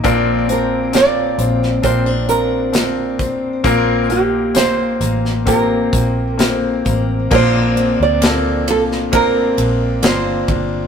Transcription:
Already playing: A#3 D#4 F4
0.04 A#1 A#2 C4 D4 F4 A#4, kick, closed hi-hat
0.48 C4 D4 F4 A#4 C5, closed hi-hat
0.93 C4 D4 F4 A#4 D5, snare, closed hi-hat
1.38 A#1 C4, closed hi-hat
1.63 snare
1.82 A#1 C4 D4 F4 A#4 C5, kick, closed hi-hat
2.06 D4
2.29 C4 A#4, closed hi-hat
2.73 C4 D4 F4 A#4, snare, closed hi-hat
3.19 C4, kick, closed hi-hat
3.64 A#1 A#2 A#3 C4 F4 A#4, kick, closed hi-hat
4.09 A#3 C4 F4 G4 A#4, closed hi-hat
4.54 A#3 C4 F4 C5, snare, closed hi-hat
5.00 A1 A#3, closed hi-hat
5.25 snare
5.46 A#3 C4 F4 G4 A#4, kick, closed hi-hat
5.93 A#1 A#3, kick, closed hi-hat
6.35 A#3 C4 F4 A4, closed hi-hat
6.39 A#4, snare
6.85 A1 A#3, kick, closed hi-hat
7.31 A#1 A#2 A#3 C4 D4 F4 A#4, kick, crash
7.35 C5
7.77 C4, ride
8.00 D2 D5
8.22 A#3 C4 D4 F4 A4, snare, ride
8.67 C2 F4 A4, ride
8.92 snare
9.12 A#3 C4 D4 F4 A#4, kick, ride
9.57 A#1 D4, ride
10.02 G1 A#3 C4 D4 F4 A#4 C5, snare, ride
10.48 G1 D4, kick, ride

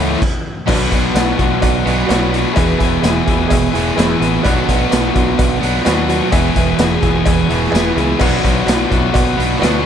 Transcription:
Already playing: A2 E3 A3 C#4 E4 A4
0.00 C#2 C#5 F#5
0.13 snare
0.22 kick, crash
0.67 B1 B2 F#3 B3 D4 F#4 B4 D5 F#5, kick, crash, cowbell
0.91 B1 B3 D4 F#4 B4 D5 F#5, kick, closed hi-hat
1.13 B1 B2 F#3 B3 D4 F#4 B4 D5 F#5, snare, closed hi-hat, tambourine, cowbell
1.38 B1 B3 D4 F#4 B4 D5 F#5, kick, closed hi-hat
1.61 B1 F#4 B4 D5 F#5, kick, closed hi-hat, cowbell
1.85 B1 B2 F#3 B3 F#4 B4 D5 G#5, closed hi-hat
2.07 B1 B2 F#3 B3 D4 F#4 B4 D5 F#5, closed hi-hat, tambourine, cowbell
2.11 F#4, snare
2.30 D4 F#4 B4 D5 F#5
2.34 B3, closed hi-hat
2.53 E1 E2 B2 E3 G#3 B3 G#4 B4 E5 G#5, cowbell
2.57 E4 G#4, kick, closed hi-hat
2.78 E1 E3 G#3 B3 E4 G#4 B4 E5 G#5, kick, closed hi-hat
3.01 E1 E3 G#3 B3 E4 G#4 B4 E5 G#5, snare, closed hi-hat, tambourine, cowbell
3.25 E1 B3 G#4 B4 E5 G#5, kick, closed hi-hat
3.29 E3 G#3 E4
3.48 E1 G#4 B4 E5 G#5, kick, closed hi-hat, cowbell
3.73 E1 B2 E3 G#4 B4 E5 G#5, closed hi-hat
3.77 E2
3.96 E1 E2 B2 E3 G#3 B3 E4 G#4 B4 E5 G#5, snare, closed hi-hat, tambourine, cowbell
4.20 A1 E3 G#3 B3 E4 G#4 B4 E5 G#5, closed hi-hat
4.43 B1 B2 F#3 B3 D4 F#4 B4 D5 F#5, kick, closed hi-hat, cowbell
4.67 B1 B3 D4 F#4 B4 D5 F#5, kick, closed hi-hat
4.90 B1 B2 F#3 B3 D4 F#4 B4 D5 F#5, snare, closed hi-hat, tambourine, cowbell
5.14 B1 B3 D4 F#4 B4 D5 F#5, kick, closed hi-hat
5.39 B1 F#4 B4 D5 F#5, kick, closed hi-hat, cowbell
5.61 B1 B2 F#3 B3 F#4 B4 D5 F#5, closed hi-hat
5.76 snare
5.84 D#2 B2 F#3 B3 D4 F#4 B4 D5 F#5, snare, closed hi-hat, tambourine, cowbell
6.08 B3 D4 F#4 B4 D5 F#5, closed hi-hat
6.31 E1 E2 B2 E3 B3 E4 G#4 B4 E5 G#5, kick, closed hi-hat, cowbell
6.55 E1 E3 B3 E4 G#4 B4 E5 G#5, kick, closed hi-hat
6.78 E1 E3 B3 E4 G#4 B4 E5 F#5, snare, closed hi-hat, tambourine, cowbell
7.01 E1 B3 E4 G#4 B4 E5 G#5, kick, closed hi-hat
7.06 E3
7.26 E1 G#4 B4 E5 G#5, kick, closed hi-hat, cowbell
7.49 E1 E2 B2 E3 G#4 B4 E5 G#5, closed hi-hat
7.64 snare
7.71 E1 E2 B2 E3 B3 E4 G#4 B4 E5 G#5, closed hi-hat, tambourine, cowbell
7.76 G#4, snare
7.95 C#2 B3 E4 G#4 B4 E5 G#5, closed hi-hat
8.00 E3
8.18 B1 B2 F#3 B3 D4 F#4 B4 D5 F#5, kick, cowbell, crash
8.23 F#4
8.44 B1 B3 D4 F#4 B4 D5 F#5, kick, closed hi-hat
8.66 B1 B2 F#3 B3 D4 F#4 B4 D5 F#5, snare, closed hi-hat, tambourine, cowbell
8.89 B1 D4 F#4 B4 D5 E5, kick, closed hi-hat
8.93 B3
9.13 B1 F#4 B4 D5 F#5, kick, closed hi-hat, cowbell
9.37 B1 B2 F#3 B3 F#4 B4 D5 F#5, closed hi-hat
9.53 snare
9.59 D2 B2 F#3 B3 D4 F#4 B4 D5 F#5, cowbell
9.63 F#4, snare, closed hi-hat, tambourine

